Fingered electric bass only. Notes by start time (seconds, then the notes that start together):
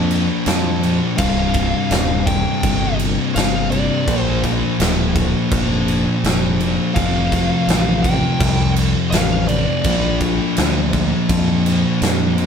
Already playing: F2
0.46 F2
1.19 C1
1.91 D#1
2.63 G1
3.36 G1
4.08 A#1
4.80 D1
5.52 F1
6.23 F1
6.97 F1
7.67 A1
8.40 C2
9.12 A1
9.85 A#1
10.58 D2
11.29 F2
12.01 F2